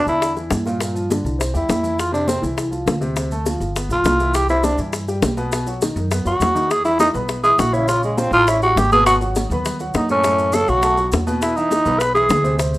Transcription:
0.07 E2 D3 D4 E4, high bongo, high conga, maracas
0.22 high bongo, high conga, maracas
0.37 E3 E4, high bongo, high conga, maracas
0.51 G2, high bongo, low bongo, high conga, maracas
0.66 A#2 A#3, high bongo, high conga, maracas
0.81 A#2 A#3, high bongo, maracas
0.95 F3 F4, high conga, maracas
1.10 D3 D4, high bongo, high conga, maracas
1.25 C2, high bongo, maracas
1.39 C4 C5, high bongo, high conga, maracas
1.54 E2 G3 E4 G4, high bongo, high conga, maracas
1.69 F2, high bongo, low bongo, high conga, maracas
1.83 E3 E4, high bongo, high conga, maracas
1.99 F4, high bongo, high conga, maracas
2.12 C3 C4 D4, high conga, maracas
2.28 C4, high bongo, high conga, maracas
2.42 C2 E3 E4, high bongo, high conga, maracas
2.58 high bongo, high conga, maracas
2.71 F3 F4, high bongo, high conga, maracas
2.86 D2, high bongo, low bongo, high conga, maracas
3.01 C3 C4, high bongo, maracas
3.16 C3 C4, high bongo, high conga, maracas
3.31 A3 A4, high conga, maracas
3.46 F3 F4, high bongo, high conga, maracas
3.60 G1, high bongo, high conga, maracas
3.75 B3 B4, high bongo, high conga, maracas
3.89 B1 F3 F4, high bongo, high conga, maracas
4.04 C2, high bongo, low bongo, high conga, maracas
4.20 E3 E4, high bongo, high conga, maracas
4.34 G4, high bongo, high conga, maracas
4.49 C3 C4 E4, high conga, maracas
4.63 D4, high bongo, high conga, maracas
4.78 G2 E3 E4, high bongo, high conga, maracas
4.93 high bongo, high conga, maracas
5.08 G3 G4, high bongo, high conga, maracas
5.22 B1, high bongo, low bongo, high conga, maracas
5.37 B2 B3, high bongo, maracas
5.52 B2 B3, high bongo, maracas
5.67 F#3 F#4, high conga, maracas
5.82 D#3 D#4, high bongo, high conga, maracas
5.96 F#2, high bongo, maracas
6.11 B3 B4, high bongo, high conga, maracas
6.25 F#2 F#3 F#4, high bongo, high conga, maracas
6.40 E2, high bongo, low bongo, high conga, maracas
6.55 D#3 D#4, high bongo, high conga, maracas
6.71 G#4, high bongo, high conga, maracas
6.85 E3 E4 E5, maracas
6.99 D#4, high bongo, high conga, maracas
7.14 B1 B3 B4 B5, high bongo, high conga, low conga, maracas
7.28 high bongo, high conga, maracas
7.43 E3 E4 G#4 E5, high bongo, high conga, maracas
7.58 A#1 F#4, high bongo, low bongo, high conga, maracas
7.73 C#3 C#4 E4 C#5, high bongo, maracas
7.88 C#3 C#4 F4 C#5, high bongo, high conga, maracas
8.03 G#3, high conga, maracas
8.17 F3 C4 F4 F5, high bongo, high conga, maracas
8.31 A1 F4, high bongo, high conga, maracas
8.47 C#4 E4 C#5 C#6, high bongo, high conga, maracas
8.62 G3 F#4 G4 G5, high bongo, high conga, maracas
8.76 G#1 G4, high bongo, low bongo, high conga, maracas
8.92 B2 B3 G#4 B4, high bongo, high conga, maracas
9.06 F#4, high bongo, high conga, maracas
9.21 F#3 F#4 F#5, high conga, maracas
9.35 high bongo, high conga, maracas
9.50 D#2 B3 B4 B5, high bongo, high conga, low conga, maracas
9.65 high bongo, high conga, low conga, maracas
9.80 F#3 F#4 F#5, high bongo, high conga, maracas
9.94 F#2 D#4, high bongo, low bongo, high conga, maracas
10.09 A2 A3 C#4 A4, high bongo, maracas
10.24 A2 A3 A4, high bongo, maracas
10.38 high conga, maracas
10.52 C#3 C#4 A4 C#5, high bongo, high conga, maracas
10.68 B1 F#4, high bongo, high conga, maracas
10.82 A3 A4 A5, high bongo, high conga, maracas
10.97 F#3 F#4 F#5, high bongo, high conga, maracas
11.12 E2, high bongo, low bongo, high conga, maracas
11.27 B2 B3 B4, high bongo, high conga, maracas
11.42 E4, high bongo, high conga, maracas
11.56 E3 D#4 E4 E5, high conga, maracas
11.71 high bongo, high conga, maracas
11.85 B1 B3 B4 B5, high bongo, high conga, low conga, maracas
11.99 B4, high bongo, maracas
12.14 E3 E4 G#4 E5, high bongo, high conga, maracas
12.29 D2, high bongo, low bongo, high conga, maracas
12.44 C3 C4 C5, high bongo, maracas
12.58 C3 C4 C5, high bongo, maracas
12.74 high conga, maracas

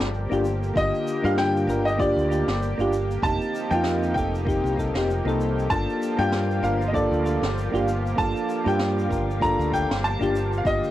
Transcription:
Already playing: F3 A#3 G4 A4 D5
0.00 G1, snare, shaker
0.14 shaker
0.30 G1 A#3 D4 F4 G4, shaker
0.45 shaker
0.63 shaker
0.74 G1 D3 A#3 F4 G4 D#5, kick, shaker
0.94 shaker
1.07 shaker
1.22 G2 A#3 D4 F4 G4 F5, shaker
1.38 G5, snare, shaker
1.57 shaker
1.67 G1 A#3 D4 F4 A#4, shaker
1.85 D#5, shaker
1.97 A#3 D4 F4 G4 D5, kick, shaker
2.16 D2, shaker
2.29 A#3 D4 F4 G4, shaker
2.48 G1, snare, shaker
2.62 shaker
2.78 G1 A#3 D4 F4 G4, shaker
2.93 shaker
3.11 shaker
3.22 F1 F3 A#3 C4 D#4 G4 A5, kick, shaker
3.41 shaker
3.55 shaker
3.71 F2 A#3 C4 D#4 F4 G5, shaker
3.84 snare, shaker
4.03 shaker
4.14 F1 A#3 C4 D#4 A4 G5, kick, shaker
4.35 shaker
4.45 A#3 C4 D#4 G4, kick, shaker
4.64 C2, shaker
4.76 A#3 C4 D#4 A4, kick, shaker
4.94 F1 A#3 C4 D#4 G4, snare, shaker
5.11 shaker
5.25 C2 A#3 C4 D#4 A4, shaker
5.41 shaker
5.59 shaker
5.70 G1 A#3 D4 F4 A4 F5 A5 D6, kick, shaker
5.89 shaker
6.02 shaker
6.17 G2 A#3 D4 F4 G4 G5, shaker
6.32 snare, shaker
6.51 shaker
6.62 G1 A#3 D4 F4 A#4 F5, shaker
6.81 shaker
6.88 D#5
6.93 A#3 D4 F4 A4 D5, kick, shaker
7.11 D2, shaker
7.23 A#3 D4 F4 A4, shaker
7.42 G1, snare, shaker
7.58 shaker
7.72 G1 A#3 D4 F4 G4, shaker
7.88 shaker
8.06 shaker
8.16 G1 A#3 D4 F4 A4 A5, kick, shaker
8.36 shaker
8.49 shaker
8.64 G2 A#3 D4 F4 G4 G5
8.68 shaker
8.79 snare, shaker
8.99 shaker
9.08 G1 A#3 D4 F4 A#4, kick, shaker
9.30 shaker
9.40 A#3 D4 F4 A4 A#5, kick, shaker
9.59 D2, shaker
9.71 A#3 D4 F4 A4 G5, kick, shaker
9.91 G1, snare, shaker
10.04 A5, shaker
10.19 G1 A#3 D4 F4 G4, shaker
10.35 shaker
10.52 shaker
10.58 F5
10.64 G1 D3 A#3 F4 G4 D#5, kick, shaker
10.84 shaker

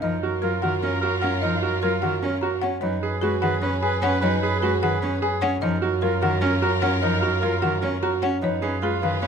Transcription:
0.02 F#2 F3 D#4 F4 A#4 D#5
0.22 F#4 A#4
0.42 F#3 F4 A#4
0.62 D#3 F#4 A#4 F#5
0.82 C#4 A#4
1.01 F#4 A#4 A#5
1.21 C#4 A#4 F#5
1.42 F3 D#4 A#4 D#5
1.62 F#4 A#4
1.82 F#3 F4 A#4
2.02 D#3 F#4 A#4 F#5
2.22 C#4 A#4
2.41 F#4 A#4 A#5
2.62 C#4 F#5
2.81 F#2 F#3 D#4 G#4 B4 C#5
3.01 G#4 B4
3.21 G#3 F#4 G#4 B4
3.41 D#3 G#4 B4 F#5
3.61 C#4 B4
3.82 G#4 B4 G#5
4.02 C#4 B4 F#5
4.21 F#3 D#4 B4 C#5
4.41 G#4 B4
4.60 G#3 F#4 G#4 B4
4.81 D#3 G#4 B4 F#5
5.01 C#4 B4
5.20 G#4 B4 G#5
5.42 C#4 F#5
5.61 F#2 F3 D#4 F4 A#4 D#5
5.81 F#4 A#4
6.02 F#3 F4 A#4
6.21 D#3 F#4 A#4 F#5
6.41 C#4 A#4
6.62 F#4 A#4 A#5
6.82 C#4 A#4 F#5
7.02 F3 D#4 A#4 D#5
7.21 F#4 A#4
7.41 F#3 F4 A#4
7.61 D#3 F#4 A#4 F#5
7.81 C#4 A#4
8.01 F#4 A#4 A#5
8.22 C#4 F#5
8.42 F#2 F3 D#4 F4 B4 C#5
8.62 C#4 G#4 B4
8.82 G#3 F4 G#4 B4
9.02 D#3 G#4 B4 F5
9.21 C#4 B4

